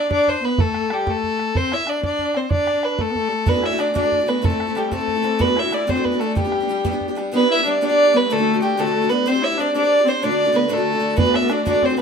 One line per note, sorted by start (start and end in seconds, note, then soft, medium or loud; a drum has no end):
0.00 0.11 D4 medium
0.00 0.11 D5 loud
0.11 0.41 D4 medium
0.11 0.30 D5 loud
0.11 bodhran medium
0.28 0.46 C5 medium
0.28 bodhran soft
0.43 0.61 B3 medium
0.43 0.62 B4 medium
0.58 0.93 A3 medium
0.58 0.95 A4 loud
0.58 bodhran loud
0.74 bodhran medium
0.90 1.09 G3 medium
0.90 1.12 G4 medium
0.90 bodhran medium
1.07 1.55 A3 medium
1.07 1.58 A4 loud
1.07 bodhran medium
1.23 bodhran soft
1.39 bodhran soft
1.55 1.74 C4 medium
1.55 1.75 C5 loud
1.55 bodhran medium
1.72 1.87 E4 medium
1.72 1.90 E5 medium
1.72 bodhran medium
1.87 2.02 D4 medium
1.87 2.04 D5 medium
1.87 bodhran medium
2.03 2.38 D4 medium
2.03 2.38 D5 loud
2.03 bodhran medium
2.19 bodhran soft
2.35 2.51 C4 medium
2.35 2.51 C5 medium
2.35 bodhran medium
2.51 3.01 D4 medium
2.51 2.86 D5 loud
2.51 bodhran medium
2.67 bodhran medium
2.83 3.03 B4 medium
2.83 bodhran medium
2.99 3.12 A3 medium
2.99 3.50 A4 loud
2.99 bodhran medium
3.10 3.17 B3 medium
3.15 3.30 A3 medium
3.15 bodhran soft
3.28 3.33 G3 medium
3.28 3.49 A3 medium
3.46 3.54 D2 medium
3.46 3.55 A2 medium
3.46 3.55 E3 medium
3.46 3.55 A3 medium
3.46 3.63 B3 medium
3.46 3.54 D4 medium
3.46 3.53 F#4 medium
3.46 3.67 B4 loud
3.46 bodhran medium
3.54 3.72 E3 soft
3.54 3.72 A3 soft
3.54 3.70 D4 soft
3.54 3.69 F#4 soft
3.62 3.81 E4 medium
3.62 3.81 E5 medium
3.62 bodhran medium
3.70 3.77 E3 soft
3.70 3.78 A3 soft
3.70 3.79 D4 soft
3.70 3.79 F#4 medium
3.78 3.94 E3 medium
3.78 3.94 A3 medium
3.78 3.93 D4 medium
3.78 3.94 D4 medium
3.78 3.95 F#4 medium
3.78 3.95 D5 medium
3.78 bodhran medium
3.94 4.03 D2 medium
3.94 4.03 A2 medium
3.94 4.03 E3 medium
3.94 4.03 A3 medium
3.94 4.25 D4 medium
3.94 4.02 D4 medium
3.94 4.02 F#4 medium
3.94 4.30 D5 loud
3.94 bodhran medium
4.03 4.21 E3 soft
4.03 4.20 A3 soft
4.03 4.19 D4 medium
4.03 4.18 F#4 soft
4.12 bodhran soft
4.20 4.25 E3 soft
4.20 4.26 A3 soft
4.20 4.27 D4 soft
4.20 4.27 F#4 soft
4.26 4.41 E3 medium
4.26 4.42 A3 medium
4.26 4.43 B3 medium
4.26 4.43 D4 medium
4.26 4.44 F#4 medium
4.26 4.46 B4 medium
4.26 bodhran soft
4.42 4.51 C3 medium
4.42 4.51 E3 medium
4.42 4.78 A3 medium
4.42 4.50 A3 medium
4.42 4.51 C4 medium
4.42 4.49 E4 medium
4.42 4.79 A4 medium
4.42 bodhran medium
4.50 4.67 A3 soft
4.50 4.68 C4 soft
4.50 4.66 E4 medium
4.60 bodhran medium
4.67 4.76 A3 soft
4.67 4.76 C4 soft
4.67 4.75 E4 soft
4.75 4.90 E3 medium
4.75 4.94 G3 medium
4.75 4.92 A3 medium
4.75 4.91 C4 medium
4.75 4.92 E4 medium
4.75 4.93 G4 medium
4.75 bodhran medium
4.91 5.00 C3 medium
4.91 5.00 E3 medium
4.91 4.99 A3 medium
4.91 5.41 A3 medium
4.91 5.00 C4 medium
4.91 4.97 E4 medium
4.91 5.43 A4 loud
4.91 bodhran medium
4.99 5.16 A3 soft
4.99 5.17 C4 soft
4.99 5.14 E4 medium
5.08 bodhran soft
5.16 5.23 A3 soft
5.16 5.22 C4 soft
5.16 5.24 E4 soft
5.23 5.38 E3 medium
5.23 5.38 A3 medium
5.23 5.39 C4 medium
5.23 5.39 E4 medium
5.23 bodhran soft
5.38 5.47 D2 medium
5.38 5.47 A2 medium
5.38 5.48 E3 medium
5.38 5.48 A3 medium
5.38 5.57 B3 medium
5.38 5.47 D4 medium
5.38 5.46 F#4 medium
5.38 5.60 B4 loud
5.38 bodhran medium
5.47 5.64 E3 soft
5.47 5.63 A3 soft
5.47 5.62 D4 soft
5.47 5.61 F#4 medium
5.55 5.88 E4 medium
5.55 5.75 E5 loud
5.55 bodhran medium
5.63 5.69 E3 soft
5.63 5.70 A3 soft
5.63 5.71 D4 soft
5.63 5.71 F#4 medium
5.70 5.86 E3 medium
5.70 5.87 A3 medium
5.70 5.87 D4 medium
5.70 5.88 F#4 medium
5.70 5.91 D5 medium
5.70 bodhran medium
5.87 5.96 D2 medium
5.87 5.96 A2 medium
5.87 5.96 E3 medium
5.87 5.96 A3 medium
5.87 6.05 C4 medium
5.87 5.95 D4 medium
5.87 5.94 F#4 medium
5.87 6.06 C5 medium
5.87 bodhran medium
5.95 6.13 E3 soft
5.95 6.12 A3 soft
5.95 6.12 D4 medium
5.95 6.11 F#4 medium
6.04 6.21 B3 medium
6.04 6.21 B4 medium
6.04 bodhran soft
6.12 6.20 E3 soft
6.12 6.20 A3 soft
6.12 6.21 D4 soft
6.12 6.20 F#4 medium
6.20 6.35 E3 medium
6.20 6.38 A3 medium
6.20 6.36 A3 medium
6.20 6.36 D4 medium
6.20 6.36 F#4 medium
6.20 6.36 A4 medium
6.20 bodhran soft
6.35 6.44 G3 medium
6.35 7.17 G3 medium
6.35 6.44 B3 medium
6.35 6.44 D4 medium
6.35 7.13 G4 medium
6.35 6.43 G4 medium
6.35 bodhran medium
6.45 6.61 B3 soft
6.45 6.61 D4 soft
6.45 6.59 G4 medium
6.52 bodhran medium
6.60 6.68 B3 soft
6.60 6.69 D4 soft
6.60 6.68 G4 soft
6.68 6.83 G3 medium
6.68 6.83 B3 medium
6.68 6.84 D4 medium
6.68 6.85 G4 medium
6.85 6.93 G3 medium
6.85 6.92 B3 medium
6.85 6.92 D4 medium
6.85 6.90 G4 medium
6.85 bodhran medium
6.91 7.09 B3 soft
6.91 7.08 D4 soft
6.91 7.07 G4 medium
7.01 bodhran soft
7.08 7.15 B3 soft
7.08 7.16 D4 medium
7.08 7.16 G4 medium
7.15 7.30 G3 medium
7.15 7.31 B3 medium
7.15 7.32 D4 medium
7.15 7.32 G4 medium
7.15 bodhran soft
7.32 7.40 G3 medium
7.32 7.41 B3 medium
7.32 7.48 B3 medium
7.32 7.40 D4 medium
7.32 7.38 G4 medium
7.36 7.55 G4 medium
7.36 7.53 B4 loud
7.41 7.58 B3 soft
7.41 7.56 D4 medium
7.50 7.64 E4 medium
7.50 7.63 E5 loud
7.56 7.65 B3 medium
7.56 7.65 D4 soft
7.56 7.64 G4 medium
7.63 7.80 G3 medium
7.63 7.81 B3 medium
7.63 7.80 D4 medium
7.63 7.81 D4 medium
7.63 7.69 E5 medium
7.67 7.82 G4 medium
7.67 7.82 D5 medium
7.81 7.89 G3 medium
7.81 7.89 B3 medium
7.81 8.15 D4 medium
7.81 7.90 D4 medium
7.81 7.88 G4 medium
7.81 8.18 D5 loud
7.89 8.06 B3 soft
7.89 8.05 D4 medium
7.89 8.03 G4 medium
8.04 8.13 B3 soft
8.04 8.14 D4 soft
8.04 8.13 G4 medium
8.13 8.29 G3 medium
8.13 8.28 B3 medium
8.13 8.30 B3 medium
8.13 8.30 D4 medium
8.13 8.30 G4 medium
8.13 8.34 B4 loud
8.28 8.37 D2 medium
8.28 8.38 A2 medium
8.28 8.38 D3 medium
8.28 8.73 A3 loud
8.28 8.37 A3 medium
8.28 8.38 D4 medium
8.28 8.37 F#4 medium
8.28 8.61 A4 loud
8.38 8.55 D3 soft
8.38 8.53 A3 medium
8.38 8.54 D4 soft
8.38 8.52 F#4 medium
8.54 8.59 D3 soft
8.54 8.61 A3 medium
8.54 8.61 D4 soft
8.54 8.61 F#4 medium
8.61 8.77 D3 medium
8.61 8.78 A3 medium
8.61 8.78 D4 medium
8.61 8.78 F#4 medium
8.61 8.81 G4 medium
8.77 8.85 D2 medium
8.77 8.86 A2 medium
8.77 8.86 D3 medium
8.77 9.11 A3 medium
8.77 8.85 A3 medium
8.77 8.86 D4 medium
8.77 8.84 F#4 medium
8.77 9.11 A4 loud
8.85 9.03 D3 medium
8.85 9.02 A3 medium
8.85 9.02 D4 soft
8.85 9.00 F#4 medium
9.02 9.08 D3 soft
9.02 9.10 A3 medium
9.02 9.09 D4 soft
9.02 9.10 F#4 medium
9.09 9.25 D3 medium
9.09 9.26 A3 medium
9.09 9.29 B3 medium
9.09 9.25 D4 medium
9.09 9.27 F#4 medium
9.09 9.29 B4 medium
9.26 9.34 C4 medium
9.26 9.44 C4 medium
9.26 9.34 D4 medium
9.26 9.34 G4 medium
9.26 9.33 C5 medium
9.26 9.45 C5 loud
9.34 9.51 D4 soft
9.34 9.50 G4 soft
9.34 9.49 C5 medium
9.42 9.59 E4 medium
9.42 9.61 E5 loud
9.50 9.58 D4 soft
9.50 9.59 G4 medium
9.50 9.58 C5 medium
9.58 9.73 C4 medium
9.58 9.73 D4 medium
9.58 9.74 D4 medium
9.58 9.75 G4 medium
9.58 9.75 C5 medium
9.58 9.75 D5 medium
9.73 9.82 C4 medium
9.73 10.03 D4 medium
9.73 9.82 D4 medium
9.73 9.83 G4 medium
9.73 9.81 C5 medium
9.73 10.10 D5 loud
9.83 9.99 D4 soft
9.83 9.99 G4 medium
9.83 9.98 C5 soft
9.99 10.06 D4 soft
9.99 10.07 G4 soft
9.99 10.06 C5 medium
10.05 10.12 C4 medium
10.05 10.22 C4 medium
10.05 10.22 D4 medium
10.05 10.23 G4 medium
10.05 10.25 C5 loud
10.05 10.23 C5 medium
10.21 10.30 D2 medium
10.21 10.30 A2 medium
10.21 10.31 D3 medium
10.21 10.29 A3 medium
10.21 10.51 D4 medium
10.21 10.30 D4 medium
10.21 10.28 F#4 medium
10.21 10.58 D5 loud
10.29 10.46 D3 medium
10.29 10.45 A3 soft
10.29 10.45 D4 medium
10.29 10.44 F#4 medium
10.45 10.51 D3 soft
10.45 10.53 A3 medium
10.45 10.52 D4 medium
10.45 10.53 F#4 medium
10.52 10.68 D3 medium
10.52 10.69 A3 medium
10.52 10.69 B3 medium
10.52 10.69 D4 medium
10.52 10.69 F#4 medium
10.52 10.75 B4 medium
10.68 10.77 D2 medium
10.68 10.78 A2 medium
10.68 10.78 D3 medium
10.68 11.19 A3 medium
10.68 10.76 A3 medium
10.68 10.77 D4 medium
10.68 10.76 F#4 medium
10.73 10.91 F#4 medium
10.73 11.18 A4 medium
10.77 10.94 D3 soft
10.77 10.92 A3 medium
10.77 10.93 D4 soft
10.92 10.98 D3 soft
10.92 11.00 A3 soft
10.92 10.99 D4 soft
10.92 11.01 F#4 soft
11.00 11.16 D3 medium
11.00 11.15 A3 medium
11.00 11.16 D4 medium
11.00 11.16 F#4 medium
11.16 11.25 D2 medium
11.16 11.25 A2 medium
11.16 11.25 E3 medium
11.16 11.25 A3 medium
11.16 11.51 B3 medium
11.16 11.24 D4 medium
11.16 11.23 F#4 medium
11.16 11.37 B4 loud
11.16 bodhran medium
11.24 11.42 E3 soft
11.24 11.41 A3 soft
11.24 11.41 D4 medium
11.24 11.40 F#4 medium
11.34 11.54 E5 medium
11.34 bodhran medium
11.41 11.47 E3 soft
11.41 11.48 A3 soft
11.41 11.49 D4 soft
11.41 11.50 F#4 medium
11.49 11.65 E3 medium
11.49 11.66 A3 medium
11.49 11.66 D4 medium
11.49 11.65 D4 medium
11.49 11.66 F#4 medium
11.49 11.67 D5 medium
11.49 bodhran medium
11.65 11.74 D2 medium
11.65 11.74 A2 medium
11.65 11.74 E3 medium
11.65 11.73 A3 medium
11.65 11.84 D4 medium
11.65 11.73 D4 medium
11.65 11.71 F#4 medium
11.65 11.87 D5 medium
11.65 bodhran medium
11.73 11.91 E3 soft
11.73 11.90 A3 soft
11.73 11.89 D4 medium
11.73 11.87 F#4 medium
11.82 12.00 C4 medium
11.82 11.98 C5 medium
11.82 bodhran soft
11.89 11.95 E3 soft
11.89 11.96 A3 soft
11.89 11.97 D4 soft
11.89 11.98 F#4 soft
11.97 12.02 E3 medium
11.97 12.02 A3 medium
11.97 12.02 B3 medium
11.97 12.02 D4 medium
11.97 bodhran soft